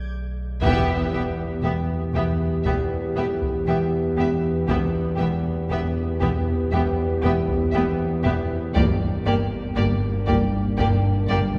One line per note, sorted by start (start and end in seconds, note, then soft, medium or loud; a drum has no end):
0.00 0.61 B1 medium
0.61 1.09 E1 medium
0.61 2.10 E2 medium
0.61 4.64 E2 medium
0.61 1.09 E2 medium
0.61 1.12 E2 soft
0.61 1.09 B3 soft
0.61 4.65 B3 soft
0.61 4.65 G4 soft
0.61 1.10 G4 soft
0.61 1.09 E5 medium
0.61 taiko medium
1.13 1.21 E1 soft
1.13 2.64 E2 soft
1.13 1.21 E2 soft
1.13 1.21 B3 soft
1.13 1.22 G4 soft
1.13 1.21 E5 soft
1.63 1.71 E1 soft
1.63 1.71 E2 soft
1.63 2.14 E3 soft
1.63 1.73 B3 soft
1.63 1.71 G4 soft
1.63 1.71 E5 soft
2.14 2.22 E1 soft
2.14 2.23 E2 soft
2.14 3.15 E3 soft
2.14 2.25 B3 soft
2.14 2.23 G4 soft
2.14 2.23 E5 soft
2.14 taiko medium
2.65 2.74 E1 soft
2.65 3.66 E2 soft
2.65 2.73 E2 soft
2.65 2.74 B3 soft
2.65 2.74 G4 soft
2.65 2.73 E5 soft
2.65 taiko medium
3.17 3.25 E1 soft
3.17 3.25 E2 soft
3.17 4.16 E3 soft
3.17 3.25 B3 soft
3.17 3.26 G4 soft
3.17 3.25 E5 soft
3.41 taiko medium
3.67 3.75 E1 soft
3.67 3.75 E2 soft
3.67 4.67 E2 soft
3.67 3.77 B3 soft
3.67 3.76 G4 soft
3.67 3.76 E5 soft
4.17 4.26 E1 soft
4.17 4.25 E2 soft
4.17 5.69 E3 soft
4.17 4.26 B3 soft
4.17 4.26 G4 soft
4.17 4.28 E5 soft
4.68 4.76 E1 soft
4.68 5.19 E2 soft
4.68 4.76 E2 soft
4.68 8.72 E2 medium
4.68 8.58 B3 soft
4.68 4.79 B3 soft
4.68 4.76 G4 soft
4.68 8.58 G4 soft
4.68 4.77 E5 soft
4.68 taiko medium
5.17 5.28 E1 soft
5.17 5.27 E2 soft
5.17 6.71 E2 soft
5.17 5.25 G4 soft
5.17 5.27 E5 soft
5.21 5.29 B3 soft
5.70 5.79 E1 soft
5.70 5.78 E2 soft
5.70 6.19 E3 soft
5.70 5.80 B3 soft
5.70 5.78 G4 soft
5.70 5.79 E5 soft
6.20 6.30 E1 soft
6.20 6.29 E2 soft
6.20 7.23 E3 soft
6.20 6.30 B3 soft
6.20 6.28 G4 soft
6.20 6.29 E5 soft
6.20 taiko medium
6.72 6.81 E1 soft
6.72 7.73 E2 soft
6.72 6.80 E2 soft
6.72 6.82 B3 soft
6.72 6.81 G4 soft
6.72 6.80 E5 soft
6.72 taiko medium
7.22 7.32 E1 soft
7.22 7.30 E2 soft
7.22 8.24 E3 soft
7.22 7.32 B3 soft
7.22 7.31 G4 soft
7.22 7.32 E5 soft
7.49 taiko medium
7.72 7.82 E1 soft
7.72 7.82 E2 soft
7.72 8.80 E2 soft
7.72 7.83 B3 soft
7.72 7.83 G4 soft
7.72 7.80 E5 soft
8.24 8.33 E1 soft
8.24 8.33 E2 soft
8.24 8.80 E3 soft
8.24 8.34 B3 soft
8.24 8.32 G4 soft
8.24 8.32 E5 soft
8.75 11.59 G1 medium
8.75 8.84 G1 medium
8.75 8.84 G2 soft
8.75 9.25 G2 medium
8.75 11.59 A#3 medium
8.75 8.84 A#3 soft
8.75 11.59 D4 medium
8.75 8.83 G4 soft
8.75 8.83 D5 soft
8.75 taiko medium
9.26 9.35 G1 soft
9.26 10.77 G2 soft
9.26 9.34 G2 soft
9.26 9.35 A#3 soft
9.26 9.35 G4 soft
9.26 9.34 D5 soft
9.76 9.85 G1 medium
9.76 9.84 G2 soft
9.76 10.26 G3 soft
9.76 9.84 A#3 soft
9.76 9.84 G4 soft
9.76 9.84 D5 soft
10.27 10.36 G1 medium
10.27 10.36 G2 medium
10.27 11.29 G3 soft
10.27 10.36 A#3 soft
10.27 10.35 G4 soft
10.27 10.35 D5 soft
10.27 taiko medium
10.78 10.86 G1 medium
10.78 10.86 G2 medium
10.78 11.59 G2 medium
10.78 10.88 A#3 soft
10.78 10.86 G4 soft
10.78 10.86 D5 soft
10.78 taiko medium
11.29 11.37 G1 medium
11.29 11.37 G2 medium
11.29 11.59 G3 soft
11.29 11.39 A#3 soft
11.29 11.38 G4 soft
11.29 11.37 D5 soft
11.55 taiko medium